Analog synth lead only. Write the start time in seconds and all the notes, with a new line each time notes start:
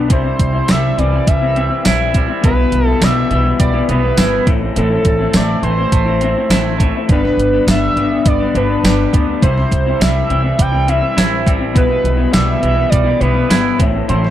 0.12 C5
0.70 E5
0.99 D5
1.28 E5
2.45 B4
2.87 A4
3.04 E5
3.59 D5
3.91 B4
4.78 A4
5.35 D5
5.63 C5
7.12 B4
7.71 E5
8.27 D5
8.57 B4
9.42 C5
10.01 E5
10.61 G5
10.89 E5
11.77 B4
12.33 E5
12.90 D5
13.20 B4
14.09 C5